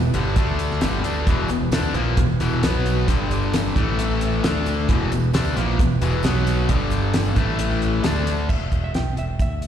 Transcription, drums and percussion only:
0.14 closed hi-hat
0.25 tambourine
0.36 kick, closed hi-hat
0.49 tambourine
0.59 closed hi-hat, tambourine
0.70 snare, tambourine
0.81 snare, closed hi-hat, tambourine
0.93 tambourine
1.04 closed hi-hat, tambourine
1.15 tambourine
1.27 kick, closed hi-hat
1.48 closed hi-hat, tambourine
1.60 tambourine
1.72 snare, closed hi-hat, tambourine
1.83 tambourine
1.94 closed hi-hat
2.17 kick, closed hi-hat
2.29 tambourine
2.40 closed hi-hat, tambourine
2.53 tambourine
2.63 snare, closed hi-hat, tambourine
2.86 closed hi-hat, tambourine
3.08 kick, closed hi-hat
3.31 closed hi-hat, tambourine
3.42 tambourine
3.53 snare, closed hi-hat, tambourine
3.76 kick, closed hi-hat
3.99 closed hi-hat
4.10 tambourine
4.21 closed hi-hat
4.33 tambourine
4.44 snare, closed hi-hat, tambourine
4.66 closed hi-hat, tambourine
4.89 kick, closed hi-hat
5.12 closed hi-hat, tambourine
5.23 tambourine
5.33 snare, closed hi-hat, tambourine
5.44 tambourine
5.56 closed hi-hat, tambourine
5.79 kick, closed hi-hat
5.90 tambourine
6.01 closed hi-hat, tambourine
6.12 tambourine
6.23 snare, closed hi-hat, tambourine
6.46 closed hi-hat, tambourine
6.69 kick, closed hi-hat
6.80 tambourine
6.90 closed hi-hat, tambourine
7.02 tambourine
7.14 snare, closed hi-hat, tambourine
7.25 tambourine
7.36 kick, closed hi-hat
7.48 tambourine
7.59 closed hi-hat, tambourine
7.71 tambourine
7.82 closed hi-hat
8.04 snare, closed hi-hat, tambourine
8.27 closed hi-hat, tambourine
8.38 tambourine
8.49 kick, crash
8.72 kick, closed hi-hat
8.94 snare, closed hi-hat
9.17 closed hi-hat
9.39 kick, closed hi-hat
9.62 closed hi-hat

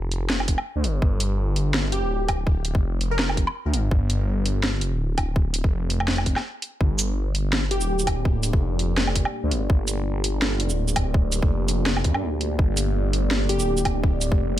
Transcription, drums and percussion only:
0.12 closed hi-hat
0.30 snare
0.40 low woodblock
0.48 kick, closed hi-hat
0.58 low woodblock
0.84 closed hi-hat
1.02 kick
1.20 closed hi-hat
1.56 closed hi-hat
1.74 snare
1.92 closed hi-hat
2.29 kick, closed hi-hat, low woodblock
2.47 kick
2.65 closed hi-hat
2.75 kick
3.01 closed hi-hat
3.19 snare
3.29 low woodblock
3.37 kick, closed hi-hat
3.47 low woodblock
3.74 closed hi-hat
3.91 kick
4.10 closed hi-hat
4.46 closed hi-hat
4.63 snare
4.81 closed hi-hat
5.18 kick, closed hi-hat, low woodblock
5.36 kick
5.54 closed hi-hat
5.64 kick
5.90 closed hi-hat
6.00 low woodblock
6.08 snare, closed hi-hat
6.11 closed hi-hat
6.13 closed hi-hat
6.16 closed hi-hat, low woodblock
6.26 kick, closed hi-hat
6.36 snare, low woodblock
6.62 closed hi-hat
6.81 kick
6.99 closed hi-hat, shaker
7.35 closed hi-hat
7.53 snare
7.71 closed hi-hat
7.81 shaker
7.99 shaker
8.07 kick, closed hi-hat, low woodblock
8.25 kick
8.43 closed hi-hat, shaker
8.53 kick
8.79 closed hi-hat
8.98 snare
9.07 low woodblock
9.16 kick, closed hi-hat
9.25 low woodblock
9.51 closed hi-hat
9.70 kick
9.88 closed hi-hat, shaker
10.24 closed hi-hat
10.42 snare
10.60 closed hi-hat
10.70 shaker
10.88 shaker
10.96 kick, closed hi-hat, low woodblock
11.14 kick
11.32 closed hi-hat, shaker
11.43 kick
11.68 closed hi-hat, shaker
11.86 snare
11.97 low woodblock
12.04 kick, closed hi-hat
12.14 low woodblock
12.41 closed hi-hat
12.59 kick
12.77 closed hi-hat, shaker
13.13 closed hi-hat
13.31 snare
13.49 closed hi-hat
13.60 shaker
13.77 shaker
13.85 kick, closed hi-hat, low woodblock
14.04 kick
14.21 closed hi-hat, shaker
14.32 kick

